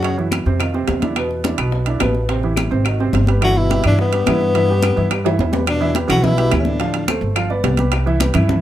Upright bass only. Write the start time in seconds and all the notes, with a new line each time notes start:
Already playing: F#2
0.46 F2
0.88 E2
1.58 B1
2.01 A1
2.71 G#1
3.13 G1
3.85 G2
4.27 G2
4.97 G2
5.39 E2
6.09 B1
6.52 D2
7.21 G1
7.64 C2
8.35 G2